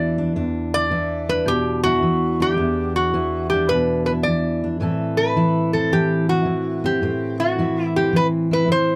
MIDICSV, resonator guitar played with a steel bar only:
0, 0, Header, 1, 2, 480
1, 0, Start_track
1, 0, Key_signature, 1, "minor"
1, 0, Tempo, 556586
1, 305, Time_signature, 4, 2, 24, 8
1, 7724, End_track
2, 0, Start_track
2, 0, Title_t, "Resonator guitar played with a steel bar"
2, 0, Program_c, 0, 25
2, 0, Note_on_c, 0, 74, 78
2, 193, Note_off_c, 0, 74, 0
2, 639, Note_on_c, 0, 74, 105
2, 1116, Note_on_c, 0, 71, 88
2, 1129, Note_off_c, 0, 74, 0
2, 1272, Note_off_c, 0, 71, 0
2, 1276, Note_on_c, 0, 67, 83
2, 1579, Note_off_c, 0, 67, 0
2, 1583, Note_on_c, 0, 66, 84
2, 2081, Note_off_c, 0, 66, 0
2, 2087, Note_on_c, 0, 67, 85
2, 2548, Note_off_c, 0, 67, 0
2, 2551, Note_on_c, 0, 66, 76
2, 3012, Note_off_c, 0, 66, 0
2, 3015, Note_on_c, 0, 67, 75
2, 3181, Note_on_c, 0, 71, 89
2, 3182, Note_off_c, 0, 67, 0
2, 3491, Note_off_c, 0, 71, 0
2, 3502, Note_on_c, 0, 71, 69
2, 3545, Note_off_c, 0, 71, 0
2, 3651, Note_on_c, 0, 74, 73
2, 4032, Note_off_c, 0, 74, 0
2, 4461, Note_on_c, 0, 71, 75
2, 4941, Note_off_c, 0, 71, 0
2, 4944, Note_on_c, 0, 69, 68
2, 5105, Note_off_c, 0, 69, 0
2, 5112, Note_on_c, 0, 67, 72
2, 5411, Note_off_c, 0, 67, 0
2, 5426, Note_on_c, 0, 66, 71
2, 5909, Note_off_c, 0, 66, 0
2, 5913, Note_on_c, 0, 67, 78
2, 6376, Note_off_c, 0, 67, 0
2, 6380, Note_on_c, 0, 66, 75
2, 6768, Note_off_c, 0, 66, 0
2, 6768, Note_on_c, 0, 64, 75
2, 6864, Note_off_c, 0, 64, 0
2, 6868, Note_on_c, 0, 67, 74
2, 7027, Note_off_c, 0, 67, 0
2, 7040, Note_on_c, 0, 71, 99
2, 7125, Note_off_c, 0, 71, 0
2, 7358, Note_on_c, 0, 71, 78
2, 7512, Note_off_c, 0, 71, 0
2, 7518, Note_on_c, 0, 72, 90
2, 7724, Note_off_c, 0, 72, 0
2, 7724, End_track
0, 0, End_of_file